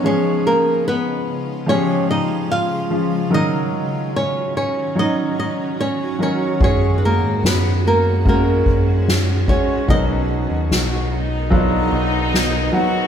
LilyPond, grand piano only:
<<
  \new Staff \with { instrumentName = "Grand piano" } { \time 4/4 \key fis \major \tempo 4 = 73 <eis gis cis' gis'>2 <eis gis cis' g' gis'>4. <eis gis cis' eis'>8 | <fis cis' dis' ais'>2 <fis cis' dis' cis''>4. <fis cis' dis' ais'>8 | <gis cis' fis' gis'>2 <gis cis' fis' ais'>4. <gis cis' fis' cis''>8 | <fis b dis' ais'>2 <fis b d' dis' eis'>4. <fis b dis' fis'>8 | }
  \new Staff \with { instrumentName = "Grand piano" } { \clef bass \time 4/4 \key fis \major cis4. r2 r8 | dis4. r2 r8 | r1 | b,4. r2 r8 | }
>>